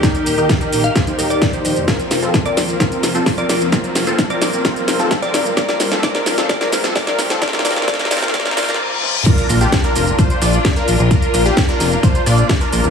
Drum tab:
CC |--------------------------------|--------------------------------|--------------------------------|--------------------------------|
HH |x-x-o-x-x-x-o---x-x-o-x-x-x-o-x-|x-x-o-x-x-x-o-x-x-x-o-x-o-x-o-x-|x-x-o-x-x-x-o-x-x-x-o-x-x-x-o-x-|x-x-o-x-x-x-o-x-x-x-o-x-o-x-o-x-|
SH |x-x-x-x-x-x-x-x-x-x-x-x-x-x-x-x-|x-x-x-x-x-x-x-x-x-x-x-x-x-x-x-x-|x-x-x-x-x-x-x-x-x-x-x-x-x-x-x-x-|x-x-x-x-x-x-x-x-x-x-x-x-x-x-x-x-|
SD |o-------o-------o-------o-------|o---o---o---o---o---o---o---o---|o---o---o---o---o---o---o---o---|o-o-o-o-o-o-o-o-o-o-o-o-o-o-o-o-|
T1 |--------------------------------|--------------------------------|--------------------------------|--------------------------------|
T2 |--------------------------------|--------------------------------|--------------------------------|--------------------------------|
BD |o-------o-------o-------o-------|o-------o-------o-------o-------|o-------o-------o-------o-------|o-------o-------o-------o-------|

CC |--------------------------------|x-------------------------------|--------------------------------|
HH |x-x-o-x-x-x-o-x-x-x-o-x---------|x-x-o-x-x-x-o-x-x-x-o-x-x-x-o-x-|x-x-o---x-x-o-x-x-x-o-x-x-x-o-x-|
SH |x-x-x-x-x-x-x-x-x-x-x-x---------|x-x-x-x-x-x-x-x-x-x-x-x-x-x-x-x-|x-x-x-x-x-x-x-x-x-x-x-x-x-x-x-x-|
SD |oooooooooooooooooooooooo--------|--------o---------------o-------|--------o---o-----------o-------|
T1 |----------------------------o---|--------------------------------|--------------------------------|
T2 |------------------------------o-|--------------------------------|--------------------------------|
BD |o-------o-------o---------------|o-------o-------o-------o-------|o-------o-------o-------o-------|